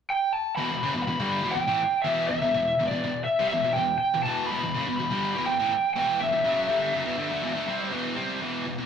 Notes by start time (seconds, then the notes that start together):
0.10 G5
0.33 A5
0.56 E2 B2 B5
0.71 E2 B2
0.83 F#2 C#3
0.94 E2 B2
1.03 B5
1.07 E2 B2
1.20 G2 D3 G3
1.43 E2 B2
1.51 G5
1.56 E2 B2
1.68 A2 E3
2.02 E2 B2 E3 E5
2.28 E2 B2 E5
2.42 E2 B2
2.54 E2 B2
2.80 E2 B2
2.87 D5
2.91 E2 B2
3.04 E2 B2
3.24 E5
3.39 C3 G3
3.48 E2 B2 E5
3.64 E2 B2
3.73 E2 B2 G5
3.98 G5
4.14 E2 B2
4.23 E2 B2 E3 A5
4.47 B5
4.51 E2 B2
4.63 E2 B2
4.74 F#2 C#3
4.87 E2 B2
4.97 E2 B2 B5
5.11 G2 D3 G3
5.35 E2 B2
5.46 E2 B2 G5
5.60 A2 E3
5.94 E2 B2 E3 G5
6.21 E2 B2 E5
6.33 E2 B2
6.44 F#2 C#3 F#3
6.69 G2 D3 G3
6.93 F#2 C#3
7.05 E2 B2
7.17 G2 D3
7.31 D3 A3
7.42 E2 B2
7.54 D3 A3
7.67 C3 G3 C4
7.92 E2 B2 E3
8.16 C3 G3 C4
8.41 E2 B2 E3
8.65 E2 B2
8.78 E2 B2